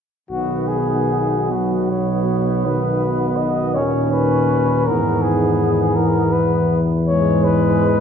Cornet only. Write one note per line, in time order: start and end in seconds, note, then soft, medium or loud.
0.31 0.70 F#4 soft
0.68 1.53 G#4 soft
1.51 1.92 F#4 soft
1.90 2.67 C#5 soft
2.65 3.38 B4 soft
3.37 3.76 D#5 medium
3.75 4.11 C#5 medium
4.12 4.88 B4 medium
4.87 5.24 A#4 medium
5.22 5.97 G#4 medium
5.96 6.34 A#4 medium
6.33 6.82 B4 medium
7.07 7.46 C#5 medium
7.44 8.00 B4 medium